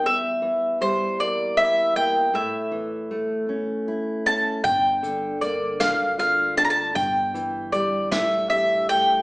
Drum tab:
HH |------|------|xxxxxx|xxxxxx|
SD |------|------|---o--|---o--|
BD |------|------|o--o--|o-----|